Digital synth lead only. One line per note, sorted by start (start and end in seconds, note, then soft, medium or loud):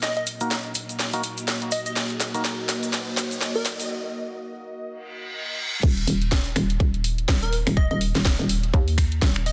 0.03 0.12 D#5 medium
0.17 0.23 D#5 medium
1.72 1.81 D#5 medium
1.86 1.93 D#5 medium
3.55 3.67 A#4 medium
7.43 7.55 A#4 medium
7.77 7.86 D#5 medium
7.91 7.97 D#5 medium
9.46 9.52 D#5 medium